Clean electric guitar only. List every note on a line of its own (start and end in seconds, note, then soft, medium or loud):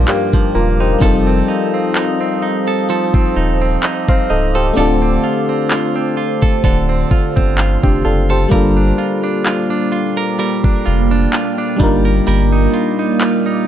0.00 1.12 G2 medium
0.00 0.33 F3 medium
0.00 0.80 D#4 medium
0.08 0.54 A#3 medium
0.33 1.01 F3 medium
0.55 1.12 A#3 medium
0.80 1.48 D#4 medium
1.02 2.89 F3 medium
1.02 2.67 A4 medium
1.27 1.73 C4 medium
1.48 1.94 D#4 medium
1.74 2.20 C4 medium
1.95 2.41 D#4 medium
2.21 3.14 C4 medium
2.42 3.35 D#4 medium
2.68 2.90 A4 medium
2.89 6.39 F3 medium
2.89 4.55 A4 medium
3.15 3.61 C4 medium
3.36 3.82 D#4 medium
3.62 4.08 C4 medium
3.83 4.29 D#4 medium
4.08 5.02 C4 medium
4.30 4.87 D#4 medium
4.55 4.77 A4 medium
4.77 6.64 D3 medium
4.77 6.41 A4 medium
5.02 5.48 C4 medium
5.24 5.70 F4 medium
5.49 5.94 C4 medium
5.71 6.17 F4 medium
5.96 6.88 C4 medium
6.17 7.11 F4 medium
6.42 6.63 A4 medium
6.64 10.14 D3 medium
6.64 8.29 A4 medium
6.89 7.35 C4 medium
7.11 7.57 F4 medium
7.36 7.82 C4 medium
7.58 8.04 F4 medium
7.83 8.62 C4 medium
8.05 8.98 F4 medium
8.30 8.52 A4 medium
8.51 10.39 G3 medium
8.51 10.17 A#4 medium
8.77 9.23 D4 medium
8.98 9.45 F4 medium
9.24 9.70 D4 medium
9.45 9.91 F4 medium
9.70 10.64 D4 medium
9.92 10.85 F4 medium
10.17 10.39 A#4 medium
10.39 11.79 G3 medium
10.39 12.05 A#4 medium
10.64 11.11 D4 medium
10.86 11.32 F4 medium
11.11 11.58 D4 medium
11.33 12.30 F4 medium
11.58 12.52 D4 medium
11.80 12.26 G3 medium
12.05 12.27 A#4 medium
12.27 13.68 G3 medium
12.27 13.68 A#4 medium
12.52 12.99 D#4 medium
12.74 13.20 F4 medium
12.99 13.46 D#4 medium
13.20 13.67 F4 medium
13.46 13.68 D#4 medium